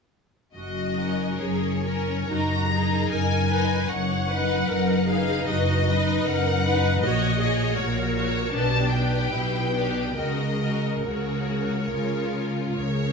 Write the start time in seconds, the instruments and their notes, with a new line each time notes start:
0.55 double bass section F#1, cello section F#2, viola section F#4, violin section D#5
0.96 violin section C#4 A#4
1.38 double bass section F#1, cello section F#2, viola section G#4, violin section C#5
1.84 violin section C#4 A#4, viola section A#4
2.27 double bass section F#1, cello section F#2, violin section D#4 A#4 A#5, viola section F#4
2.69 violin section D#4 A#4, viola section G#4
3.09 double bass section F#1, cello section F#2, viola section A#4, violin section G#5
3.49 violin section D#4 A#4, viola section B4
3.89 double bass section F#1, cello section F#2, viola section C#5, violin section F#5
4.29 violin section D#4 B4, viola section B4
4.68 double bass section F#1, cello section F#2, viola section A#4
5.07 violin section D#4 B4 F5, viola section G#4
5.46 double bass section F#1, cello section F#2, viola section F#4, violin section D#5
5.86 violin section D#4 B4, viola section B4
6.24 double bass section F#1, cello section F#2, viola section A#4, violin section F#5
6.64 violin section D#4 B4, viola section B4
7.02 double bass section A#1, cello section A#2, violin section F#4 C#5 D#5, viola section F#4
7.40 violin section F#4 C#5, viola section G#4
7.77 double bass section A#1, cello section A#2, viola section A#4, violin section C#5
8.15 violin section F#4 C#5
8.52 double bass section B1, cello section B2, viola section D4, violin section G4 B4 A5
8.91 violin section G4 B4 G5
9.33 double bass section B1, cello section B2, viola section E4
9.74 viola section D4, violin section G4 B4
10.17 double bass section C#2, cello section C#3, violin section F#4 A#4 D#5, viola section A#4
10.61 violin section F#4 A#4
11.04 double bass section C#2, cello section C#3, violin section F#4 C#5
11.90 double bass section C#2, cello section C#3, violin section F4
12.75 double bass section C#2, cello section C#3, violin section C#5